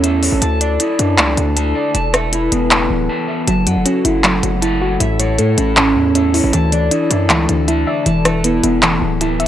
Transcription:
0.00 0.30 E2 loud
0.00 0.42 A3 medium
0.00 0.42 C#4 loud
0.00 0.39 E4 medium
0.00 0.41 E4 medium
0.00 0.42 A4 medium
0.00 3.44 A4 medium
0.00 0.22 C#5 loud
0.00 0.39 C#5 medium
0.00 0.42 E5 loud
0.00 3.44 A5 medium
0.00 closed hi-hat medium
0.23 0.42 C#5 medium
0.23 open hi-hat medium
0.32 0.41 A1 loud
0.41 0.78 D2 loud
0.41 9.48 E4 medium
0.41 1.93 D5 medium
0.41 1.55 A5 loud
0.41 closed hi-hat medium
0.61 1.74 D5 medium
0.61 closed hi-hat medium
0.80 1.37 E4 medium
0.80 closed hi-hat medium
0.99 1.20 F#2 loud
0.99 1.95 D4 medium
0.99 closed hi-hat medium
1.18 1.36 C#2 loud
1.18 1.95 A3 loud
1.18 clap loud
1.18 closed hi-hat medium
1.37 1.74 D2 loud
1.37 1.95 D3 medium
1.37 closed hi-hat medium
1.56 1.93 A5 loud
1.56 closed hi-hat medium
1.75 1.94 D5 medium
1.94 2.50 E1 loud
1.94 3.46 B4 medium
1.94 3.08 A5 loud
1.94 closed hi-hat medium
2.14 3.27 E5 medium
2.14 cross-stick loud
2.14 closed hi-hat medium
2.33 3.47 E4 medium
2.33 closed hi-hat medium
2.52 2.89 E1 loud
2.52 3.47 B3 medium
2.52 closed hi-hat medium
2.71 2.90 A3 medium
2.71 clap loud
2.71 closed hi-hat medium
2.90 3.09 D1 loud
2.90 3.47 E3 medium
3.09 3.46 A5 medium
3.28 3.47 E5 medium
3.47 3.68 F#1 loud
3.47 3.66 F#3 medium
3.47 9.48 A4 medium
3.47 6.50 C#5 medium
3.47 4.99 F#5 medium
3.47 4.60 A5 loud
3.47 closed hi-hat medium
3.67 3.78 F#2 loud
3.67 4.23 F#3 medium
3.67 4.80 F#5 medium
3.67 closed hi-hat medium
3.76 3.85 F#1 loud
3.85 4.81 C#4 loud
3.85 5.00 F#4 medium
3.85 closed hi-hat medium
4.05 4.42 F#1 loud
4.05 4.61 E4 medium
4.05 5.00 E4 medium
4.05 closed hi-hat medium
4.24 4.42 F#3 loud
4.24 5.00 A3 loud
4.24 clap loud
4.24 closed hi-hat medium
4.43 4.98 F#1 loud
4.43 5.00 F#3 medium
4.43 5.01 F#3 medium
4.43 closed hi-hat medium
4.62 5.00 E4 medium
4.62 5.00 A5 loud
4.62 closed hi-hat medium
4.81 5.00 F#4 medium
4.81 5.00 F#5 medium
5.00 5.40 A1 loud
5.00 5.18 A2 loud
5.00 6.14 E5 loud
5.00 6.52 A5 medium
5.00 closed hi-hat medium
5.20 5.76 A2 medium
5.20 6.33 C#5 loud
5.20 closed hi-hat medium
5.39 5.57 A2 loud
5.39 6.34 A3 medium
5.39 6.53 A4 medium
5.39 closed hi-hat medium
5.58 5.97 A1 loud
5.58 6.14 C#4 medium
5.58 6.52 E4 medium
5.58 closed hi-hat medium
5.77 5.95 A2 medium
5.77 6.53 C#4 loud
5.77 clap loud
5.77 closed hi-hat medium
5.96 6.41 E2 loud
5.96 6.53 A2 medium
5.96 6.53 A3 medium
6.15 6.53 C#4 medium
6.15 6.53 E5 loud
6.15 closed hi-hat medium
6.34 6.53 E4 medium
6.34 6.53 C#5 medium
6.34 open hi-hat medium
6.44 6.53 A1 loud
6.53 6.90 D2 loud
6.53 6.71 E3 loud
6.53 8.05 D5 medium
6.53 7.67 A5 loud
6.53 9.48 A5 medium
6.53 closed hi-hat medium
6.72 7.29 E3 medium
6.72 7.85 D5 medium
6.72 closed hi-hat medium
6.91 7.87 D4 medium
6.91 7.48 E4 medium
6.91 closed hi-hat medium
7.10 7.31 F#2 loud
7.10 8.06 D4 medium
7.10 7.67 E4 medium
7.10 closed hi-hat medium
7.30 7.48 C#2 loud
7.30 7.48 E3 loud
7.30 8.06 A3 loud
7.30 clap loud
7.30 closed hi-hat medium
7.49 7.85 D2 loud
7.49 8.06 D3 medium
7.49 8.05 E3 medium
7.49 closed hi-hat medium
7.68 8.06 E4 loud
7.68 8.05 A5 loud
7.68 closed hi-hat medium
7.87 8.06 D5 medium
7.87 8.06 E5 loud
8.06 8.61 E1 loud
8.06 8.24 E3 loud
8.06 9.48 B4 medium
8.06 9.20 A5 loud
8.06 closed hi-hat medium
8.25 8.81 E3 medium
8.25 9.38 E5 medium
8.25 cross-stick loud
8.25 closed hi-hat medium
8.44 9.40 B3 loud
8.44 9.48 E4 medium
8.44 closed hi-hat loud
8.63 9.00 E1 loud
8.63 9.48 B3 medium
8.63 9.20 E4 medium
8.63 closed hi-hat medium
8.83 9.00 E3 medium
8.83 9.01 A3 medium
8.83 clap loud
8.83 closed hi-hat medium
9.01 9.48 D1 loud
9.01 9.48 E3 medium
9.21 9.48 E4 medium
9.21 9.48 A5 medium
9.21 closed hi-hat medium
9.39 9.48 E5 medium
9.39 closed hi-hat medium

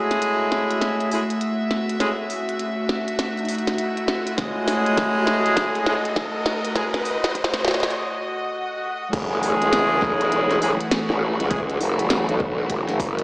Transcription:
0.00 1.08 G#3 medium
0.00 1.09 A3 medium
0.00 9.09 A3 medium
0.00 1.09 C#4 medium
0.00 1.09 E4 medium
0.00 9.09 F#4 medium
0.00 1.08 G#4 medium
0.00 4.34 E5 medium
0.00 riser medium
0.11 snare soft
0.11 closed hi-hat medium
0.22 closed hi-hat medium
0.52 snare soft
0.71 closed hi-hat medium
0.81 snare soft
0.81 closed hi-hat medium
1.00 closed hi-hat soft
1.11 1.21 G#3 medium
1.11 1.21 A3 medium
1.11 1.21 C#4 medium
1.11 1.21 E4 medium
1.11 1.21 G#4 medium
1.11 open hi-hat medium
1.30 closed hi-hat medium
1.41 closed hi-hat medium
1.71 snare medium
1.89 closed hi-hat medium
2.00 2.10 G#3 medium
2.00 2.10 A3 medium
2.00 2.10 C#4 medium
2.00 2.10 E4 medium
2.00 2.10 G#4 medium
2.00 snare medium
2.00 closed hi-hat medium
2.30 open hi-hat medium
2.49 closed hi-hat medium
2.59 closed hi-hat medium
2.89 snare medium
3.08 closed hi-hat medium
3.19 snare medium
3.19 closed hi-hat medium
3.37 closed hi-hat soft
3.45 closed hi-hat soft
3.49 closed hi-hat soft
3.49 open hi-hat medium
3.55 closed hi-hat soft
3.59 closed hi-hat soft
3.67 snare medium
3.67 closed hi-hat medium
3.78 closed hi-hat medium
3.97 closed hi-hat soft
4.08 snare medium
4.27 closed hi-hat medium
4.37 5.84 G#3 medium
4.37 5.84 A3 medium
4.37 5.84 C#4 medium
4.37 5.84 E4 medium
4.37 5.84 G#4 medium
4.37 9.09 D#5 medium
4.37 kick loud
4.37 snare medium
4.37 closed hi-hat medium
4.68 snare medium
4.68 open hi-hat medium
4.86 closed hi-hat medium
4.97 kick loud
4.97 snare medium
4.97 closed hi-hat medium
5.27 snare medium
5.46 closed hi-hat medium
5.57 kick loud
5.57 snare medium
5.57 closed hi-hat medium
5.75 closed hi-hat soft
5.86 5.96 G#3 medium
5.86 5.96 A3 medium
5.86 5.96 C#4 medium
5.86 5.96 E4 medium
5.86 5.96 G#4 medium
5.86 snare medium
6.05 closed hi-hat medium
6.16 kick loud
6.16 snare medium
6.46 snare medium
6.65 closed hi-hat medium
6.75 6.85 G#3 medium
6.75 6.85 A3 medium
6.75 6.85 C#4 medium
6.75 6.85 E4 medium
6.75 6.85 G#4 medium
6.75 kick loud
6.75 snare medium
6.75 closed hi-hat medium
6.94 snare medium
7.05 open hi-hat medium
7.24 snare medium
7.24 closed hi-hat medium
7.35 kick loud
7.35 closed hi-hat medium
7.44 snare loud
7.54 snare medium
7.65 snare medium
7.68 snare medium
7.71 snare medium
7.74 snare medium
7.74 snare soft
7.80 snare soft
7.83 snare medium
7.83 closed hi-hat soft
7.91 closed hi-hat soft
7.91 swell medium
9.13 9.59 F#1 loud
9.13 13.23 E3 medium
9.13 10.59 G#3 medium
9.13 10.59 A3 medium
9.13 13.23 A3 medium
9.13 10.59 C#4 medium
9.13 10.59 E4 medium
9.13 13.23 F#4 medium
9.13 10.59 G#4 medium
9.13 kick loud
9.13 closed hi-hat medium
9.13 crash loud
9.43 open hi-hat medium
9.62 10.01 C#2 medium
9.62 closed hi-hat medium
9.73 snare loud
9.73 closed hi-hat medium
10.02 10.60 B1 loud
10.02 kick loud
10.02 snare soft
10.21 closed hi-hat medium
10.32 closed hi-hat medium
10.51 snare soft
10.51 closed hi-hat soft
10.61 10.78 F#1 loud
10.61 10.72 G#3 medium
10.61 10.72 A3 medium
10.61 10.72 C#4 medium
10.61 10.72 E4 medium
10.61 10.72 G#4 medium
10.61 open hi-hat medium
10.81 closed hi-hat medium
10.91 snare loud
10.91 closed hi-hat medium
11.10 11.37 A1 loud
11.10 snare soft
11.40 11.79 C#2 loud
11.40 closed hi-hat medium
11.51 11.61 G#3 medium
11.51 11.61 A3 medium
11.51 11.61 C#4 medium
11.51 11.61 E4 medium
11.51 11.61 G#4 medium
11.51 kick loud
11.51 closed hi-hat medium
11.70 closed hi-hat soft
11.81 12.26 F#1 loud
11.81 open hi-hat medium
11.99 closed hi-hat medium
12.10 snare loud
12.10 closed hi-hat medium
12.29 12.68 B1 loud
12.29 closed hi-hat soft
12.40 kick loud
12.70 12.86 F#1 loud
12.70 kick medium
12.70 closed hi-hat medium
12.89 13.23 F#1 medium
12.89 snare soft
12.89 closed hi-hat soft
13.00 kick loud
13.00 open hi-hat medium
13.19 closed hi-hat medium

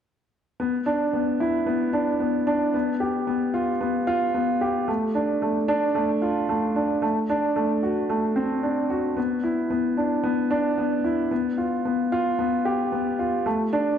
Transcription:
0.60 0.75 B3 medium
0.86 1.02 D4 medium
1.13 1.39 B3 medium
1.40 1.66 E4 medium
1.66 1.92 B3 medium
1.93 2.09 D4 medium
2.20 2.36 B3 medium
2.47 2.62 D4 medium
2.74 2.99 B3 medium
3.00 3.26 G4 medium
3.27 3.53 B3 medium
3.54 3.69 F4 medium
3.81 3.96 B3 medium
4.07 4.23 F4 medium
4.34 4.60 B3 medium
4.61 4.87 G4 medium
4.88 5.14 A3 medium
5.15 5.30 D4 medium
5.42 5.57 A3 medium
5.68 5.84 D4 medium
5.95 6.21 A3 medium
6.22 6.48 F4 medium
6.49 6.74 A3 medium
6.76 6.91 D4 medium
7.02 7.18 A3 medium
7.30 7.45 D4 medium
7.56 7.82 A3 medium
7.83 8.08 F#4 medium
8.10 8.35 A3 medium
8.36 8.62 C4 medium
8.63 8.89 D4 medium
8.90 9.15 F#4 medium
9.17 9.42 B3 medium
9.44 9.69 E4 medium
9.70 9.96 B3 medium
9.97 10.13 D4 medium
10.23 10.39 B3 medium
10.51 10.66 D4 medium
10.78 11.03 B3 medium
11.04 11.30 E4 medium
11.31 11.57 B3 medium
11.58 11.73 F4 medium
11.85 12.00 B3 medium
12.12 12.27 F4 medium
12.39 12.64 B3 medium
12.65 12.91 G4 medium
12.92 13.18 B3 medium
13.19 13.34 F4 medium
13.46 13.61 A3 medium
13.73 13.88 D4 medium

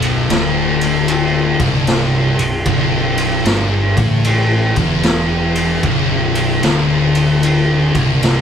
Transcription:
0.00 0.25 B0 medium
0.00 0.29 B1 loud
0.00 ride medium
0.29 1.57 D1 loud
0.29 1.59 D2 loud
0.29 snare loud
0.29 ride loud
0.81 ride medium
1.08 ride loud
1.59 2.35 C1 loud
1.59 2.38 C2 loud
1.59 kick loud
1.59 ride medium
1.87 snare loud
1.87 ride loud
2.39 2.65 B0 medium
2.39 2.62 B1 medium
2.39 ride medium
2.65 3.42 B0 loud
2.65 3.46 B1 loud
2.65 kick loud
2.65 ride loud
3.17 ride medium
3.45 3.94 G1 loud
3.45 3.97 G2 loud
3.45 snare loud
3.45 ride loud
3.97 4.73 A1 loud
3.97 4.76 A2 loud
3.97 kick loud
3.97 ride medium
4.24 ride loud
4.76 5.80 E1 medium
4.76 5.84 E2 loud
4.76 kick loud
4.76 ride medium
5.03 snare loud
5.03 ride loud
5.55 ride medium
5.83 6.59 B0 loud
5.83 6.63 B1 loud
5.83 kick loud
5.83 ride medium
6.35 ride medium
6.63 7.91 D1 loud
6.63 7.95 D2 loud
6.63 snare loud
6.63 ride medium
7.15 ride medium
7.43 ride loud
7.95 8.41 C1 loud
7.95 8.41 C2 loud
7.95 kick loud
7.95 ride medium
8.23 snare loud
8.23 ride loud

